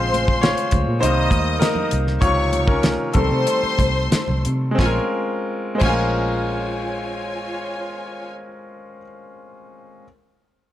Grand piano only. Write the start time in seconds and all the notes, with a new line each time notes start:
Already playing: C#3 G#3 C4 F4 C5
0.41 F4 C#5
1.01 D#3 G3 A#3 D#4 C5
1.59 D#4 A#4
2.21 C3 D#3 F3 F4 C#5
2.67 C#4 A#4
3.14 D#3 G3 A3 C4 A4
4.71 G#3 C4
4.78 C#4 F4
4.85 A#4
5.75 G#3 C5
5.82 C#4 F4
5.89 A#4